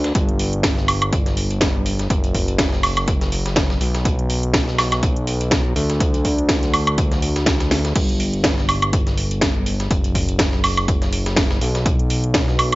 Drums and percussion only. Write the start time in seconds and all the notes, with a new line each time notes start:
0.04 snare, closed hi-hat
0.15 kick, closed hi-hat
0.29 closed hi-hat
0.39 closed hi-hat, open hi-hat
0.53 closed hi-hat
0.63 kick, snare, closed hi-hat
0.77 snare
0.88 closed hi-hat, open hi-hat, high woodblock
1.02 closed hi-hat, high woodblock
1.13 kick, closed hi-hat
1.26 snare, closed hi-hat
1.37 closed hi-hat, open hi-hat
1.51 closed hi-hat
1.61 kick, snare, closed hi-hat
1.86 closed hi-hat, open hi-hat
1.99 snare, closed hi-hat
2.10 kick, closed hi-hat
2.24 closed hi-hat
2.35 kick, closed hi-hat, open hi-hat
2.48 closed hi-hat
2.58 kick, snare, closed hi-hat
2.73 snare
2.83 open hi-hat, high woodblock
2.97 closed hi-hat, high woodblock
3.08 kick, closed hi-hat
3.21 snare, closed hi-hat
3.32 closed hi-hat, open hi-hat
3.46 snare, closed hi-hat
3.56 kick, snare, closed hi-hat
3.70 snare
3.81 closed hi-hat, open hi-hat
3.94 snare, closed hi-hat
4.05 kick, closed hi-hat
4.19 closed hi-hat
4.30 closed hi-hat, open hi-hat
4.43 closed hi-hat
4.54 kick, snare, closed hi-hat
4.68 snare
4.78 snare, closed hi-hat, open hi-hat, high woodblock
4.92 snare, closed hi-hat, high woodblock
5.03 kick, closed hi-hat
5.16 closed hi-hat
5.27 closed hi-hat, open hi-hat
5.41 closed hi-hat
5.51 kick, snare, closed hi-hat
5.76 closed hi-hat, open hi-hat
5.90 snare, closed hi-hat
6.00 kick, closed hi-hat
6.14 closed hi-hat
6.25 kick, closed hi-hat, open hi-hat
6.38 closed hi-hat
6.49 kick, snare, closed hi-hat
6.63 snare, closed hi-hat
6.74 closed hi-hat, open hi-hat, high woodblock
6.87 closed hi-hat, high woodblock
6.98 kick, closed hi-hat
7.12 snare, closed hi-hat
7.22 closed hi-hat, open hi-hat
7.36 snare, closed hi-hat
7.46 kick, snare, closed hi-hat
7.60 snare, closed hi-hat
7.71 snare, closed hi-hat, open hi-hat
7.85 snare, closed hi-hat
7.96 kick, closed hi-hat, crash
8.09 closed hi-hat
8.20 closed hi-hat, open hi-hat
8.34 closed hi-hat
8.44 kick, snare, closed hi-hat
8.58 snare
8.69 closed hi-hat, open hi-hat, high woodblock
8.82 closed hi-hat, high woodblock
8.93 kick, closed hi-hat
9.07 snare, closed hi-hat
9.17 closed hi-hat, open hi-hat
9.31 closed hi-hat
9.41 kick, snare, closed hi-hat
9.66 closed hi-hat, open hi-hat
9.80 snare, closed hi-hat
9.91 kick, closed hi-hat
10.04 closed hi-hat
10.15 kick, closed hi-hat, open hi-hat
10.29 closed hi-hat
10.39 kick, snare, closed hi-hat
10.53 snare
10.64 open hi-hat, high woodblock
10.77 closed hi-hat, high woodblock
10.88 kick, closed hi-hat
11.02 snare, closed hi-hat
11.13 closed hi-hat, open hi-hat
11.26 snare, closed hi-hat
11.36 kick, snare, closed hi-hat
11.51 snare
11.61 closed hi-hat, open hi-hat
11.75 snare, closed hi-hat
11.86 kick, closed hi-hat
11.99 closed hi-hat
12.10 closed hi-hat, open hi-hat
12.24 closed hi-hat
12.34 kick, snare, closed hi-hat
12.48 snare
12.59 closed hi-hat, open hi-hat, high woodblock